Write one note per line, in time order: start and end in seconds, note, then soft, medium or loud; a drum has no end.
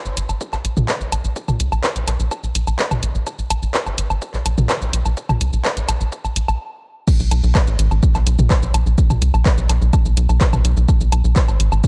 0.06 0.15 A1 medium
0.06 shaker soft
0.17 0.27 A1 medium
0.17 closed hi-hat loud
0.17 shaker medium
0.29 0.39 A1 medium
0.29 low woodblock soft
0.29 shaker soft
0.41 kick loud
0.41 shaker medium
0.53 0.63 B1 medium
0.53 clap soft
0.53 low woodblock medium
0.53 shaker soft
0.65 0.75 B1 loud
0.65 closed hi-hat loud
0.65 shaker medium
0.77 0.86 B1 medium
0.77 mid tom medium
0.77 shaker soft
0.88 kick loud
0.88 clap loud
0.88 low woodblock soft
0.88 shaker medium
1.01 1.10 B1 medium
1.01 shaker soft
1.12 1.22 B1 loud
1.12 closed hi-hat loud
1.12 low woodblock medium
1.12 shaker medium
1.25 1.34 B1 medium
1.25 shaker soft
1.36 kick loud
1.36 shaker medium
1.48 1.58 B1 medium
1.48 mid tom medium
1.48 low woodblock soft
1.48 shaker soft
1.60 1.70 C#2 loud
1.60 closed hi-hat loud
1.60 shaker medium
1.72 1.82 B1 medium
1.72 low woodblock medium
1.72 shaker soft
1.84 kick loud
1.84 clap loud
1.84 shaker medium
1.96 2.05 B1 medium
1.96 closed hi-hat medium
1.96 shaker soft
2.08 2.18 B1 loud
2.08 clap soft
2.08 closed hi-hat loud
2.08 low woodblock soft
2.08 shaker medium
2.20 2.29 B1 medium
2.20 shaker soft
2.31 kick loud
2.31 low woodblock medium
2.31 shaker medium
2.44 2.53 B1 medium
2.44 shaker soft
2.55 2.65 B1 loud
2.55 closed hi-hat loud
2.55 shaker medium
2.67 2.77 B1 medium
2.67 low woodblock medium
2.67 shaker soft
2.79 kick loud
2.79 clap loud
2.79 shaker medium
2.91 3.01 B1 medium
2.91 mid tom medium
2.91 low woodblock medium
2.91 shaker soft
3.03 3.13 B1 loud
3.03 closed hi-hat loud
3.03 shaker medium
3.15 3.24 B1 medium
3.15 shaker soft
3.27 kick loud
3.27 low woodblock medium
3.27 shaker medium
3.39 3.48 B1 medium
3.39 shaker soft
3.50 3.60 B1 loud
3.50 closed hi-hat loud
3.50 low woodblock medium
3.50 shaker medium
3.63 3.72 B1 medium
3.63 shaker soft
3.74 kick loud
3.74 clap loud
3.74 shaker medium
3.86 3.96 A1 medium
3.86 low woodblock soft
3.86 shaker soft
3.98 4.08 A1 loud
3.98 closed hi-hat loud
3.98 shaker medium
4.10 4.20 A1 medium
4.10 low woodblock medium
4.10 shaker soft
4.22 kick loud
4.22 shaker medium
4.34 4.44 B1 medium
4.34 clap soft
4.34 shaker soft
4.46 4.56 B1 loud
4.46 closed hi-hat loud
4.46 low woodblock medium
4.46 shaker medium
4.58 4.67 B1 medium
4.58 mid tom medium
4.58 shaker soft
4.69 kick loud
4.69 clap loud
4.69 low woodblock medium
4.69 shaker medium
4.82 4.91 B1 medium
4.82 shaker soft
4.93 5.03 B1 loud
4.93 closed hi-hat loud
4.93 shaker medium
5.05 5.15 B1 medium
5.05 low woodblock medium
5.05 shaker soft
5.17 kick loud
5.17 shaker medium
5.29 5.39 B1 medium
5.29 mid tom medium
5.29 low woodblock medium
5.29 shaker soft
5.41 5.51 C#2 loud
5.41 closed hi-hat loud
5.41 shaker medium
5.53 5.63 B1 loud
5.53 shaker soft
5.65 kick loud
5.65 clap loud
5.65 low woodblock medium
5.65 shaker medium
5.77 5.86 B1 medium
5.77 closed hi-hat medium
5.77 shaker soft
5.89 5.99 B1 loud
5.89 clap soft
5.89 closed hi-hat loud
5.89 low woodblock medium
5.89 shaker medium
6.01 6.10 B1 medium
6.01 shaker soft
6.12 kick loud
6.12 shaker medium
6.25 6.34 B1 medium
6.25 low woodblock medium
6.25 shaker soft
6.36 6.46 B1 loud
6.36 closed hi-hat loud
6.36 shaker medium
6.48 6.58 B1 medium
6.48 low woodblock medium
6.48 shaker soft
7.08 kick loud
7.08 crash loud
7.08 shaker medium
7.20 7.29 B1 medium
7.20 shaker soft
7.31 7.41 B1 loud
7.31 closed hi-hat loud
7.31 low woodblock medium
7.31 shaker medium
7.44 7.53 B1 loud
7.44 shaker soft
7.55 kick loud
7.55 clap loud
7.55 low woodblock medium
7.55 shaker medium
7.67 7.77 A1 medium
7.67 shaker soft
7.79 7.89 A1 loud
7.79 closed hi-hat loud
7.79 shaker medium
7.91 8.01 A1 medium
7.91 low woodblock soft
7.91 shaker soft
8.03 kick loud
8.03 shaker medium
8.15 8.24 B1 medium
8.15 clap soft
8.15 low woodblock medium
8.15 shaker soft
8.27 8.37 B1 loud
8.27 closed hi-hat loud
8.27 shaker medium
8.39 8.48 B1 medium
8.39 mid tom loud
8.39 shaker medium
8.50 kick loud
8.50 clap loud
8.50 low woodblock soft
8.50 shaker medium
8.63 8.72 B1 medium
8.63 shaker soft
8.74 8.84 B1 loud
8.74 closed hi-hat loud
8.74 low woodblock medium
8.74 shaker medium
8.86 8.96 B1 medium
8.86 shaker soft
8.98 kick loud
8.98 shaker medium
9.10 9.20 B1 medium
9.10 mid tom medium
9.10 low woodblock medium
9.10 shaker soft
9.22 9.32 C#2 loud
9.22 closed hi-hat loud
9.22 shaker medium
9.34 9.43 B1 loud
9.34 low woodblock medium
9.34 shaker soft
9.46 kick loud
9.46 clap loud
9.46 shaker medium
9.58 9.67 B1 medium
9.58 shaker soft
9.69 9.79 B1 loud
9.69 clap soft
9.69 closed hi-hat loud
9.69 low woodblock medium
9.69 shaker medium
9.82 9.91 B1 medium
9.82 shaker soft
9.93 kick loud
9.93 low woodblock medium
9.93 shaker medium
10.05 10.15 B1 medium
10.05 shaker soft
10.17 10.27 B1 loud
10.17 closed hi-hat loud
10.17 shaker medium
10.29 10.39 B1 loud
10.29 low woodblock medium
10.29 shaker soft
10.41 kick loud
10.41 clap loud
10.41 closed hi-hat medium
10.41 shaker medium
10.53 10.63 B1 medium
10.53 mid tom medium
10.53 low woodblock medium
10.53 shaker soft
10.65 10.75 B1 loud
10.65 closed hi-hat loud
10.65 shaker medium
10.77 10.86 B1 medium
10.77 shaker soft
10.88 kick loud
10.88 low woodblock medium
10.88 shaker medium
11.01 11.10 B1 medium
11.01 shaker soft
11.12 11.22 B1 loud
11.12 closed hi-hat loud
11.12 low woodblock medium
11.12 shaker medium
11.24 11.34 B1 medium
11.24 shaker soft
11.36 kick loud
11.36 clap loud
11.36 shaker medium
11.48 11.58 A1 medium
11.48 low woodblock medium
11.48 shaker soft
11.60 11.70 A1 loud
11.60 closed hi-hat loud
11.60 shaker medium
11.72 11.82 A1 medium
11.72 low woodblock medium
11.72 shaker soft
11.84 kick loud
11.84 shaker medium